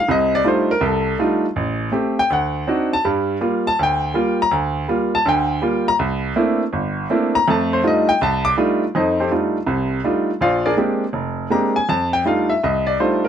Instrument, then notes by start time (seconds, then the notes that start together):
grand piano
0.08 C2 C3 D#5
0.35 D5
0.44 G3 A3 D4 D#4 F4 C5
0.71 A#4
0.81 C2
0.86 A4
1.19 G3 A3 D4 D#4 F4
1.56 A1
1.92 A3 C4 G4
2.19 G5
2.30 D2 F#5
2.67 C4 D4 D#4 F#4
2.93 A5
3.05 G2 G3
3.41 G3 A#3 F4
3.67 A5
3.79 D2
3.83 G5
4.14 G3 A#3 F4
4.42 A#5
4.51 D2
4.88 G3 A#3 F4
5.15 A5
5.26 D2 D3 G5
5.62 G3 A#3 F4
5.88 A#5
5.99 C2
6.36 A3 A#3 C4 D4 E4
6.73 G1
7.10 A3 A#3 C4 D4 E4
7.35 A#5
7.48 F2 A3 A5
7.73 C5
7.83 G3 A3 D4 D#4 F4 D#5
8.09 G5
8.21 C2 A5
8.45 D6
8.57 G3 A3 D4 D#4 F4
8.95 F2 D#4 A4 C5 D#5
9.20 C4 G4 A4 C5
9.31 G3 A3 D4 D#4 F4
9.67 C2 C3
10.04 G3 A3 D4 D#4 F4
10.41 A#1 F4 C5 D5 F5
10.66 D4 G#4 A#4 D5
10.77 G#3 A#3 C4 D4 G4
11.13 F1
11.50 G#3 A#3 C4 D4 G4 A#5
11.76 G#5
11.89 F2 A5
12.13 G5
12.25 G3 A3 D4 D#4 F4 F5
12.49 E5
12.63 C2 D#5
12.87 D5
13.00 G3 A3 D4 D#4 F4 C5
13.25 A#4